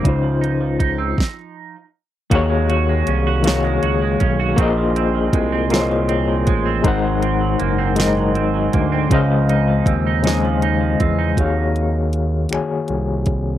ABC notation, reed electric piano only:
X:1
M:6/8
L:1/8
Q:3/8=53
K:Ebdor
V:1 name="Reed electric piano"
[D,DEFc]3 z3 | [E,B,GAdf]3 [E,B,GAdf]3 | [B,FAce]3 [B,FAcde]3 | [A,EBcg]3 [A,EBce]3 |
[D,A,cef]3 [D,A,cea]3 | [E,B,GAdf]3 [E,B,GAda]3 |]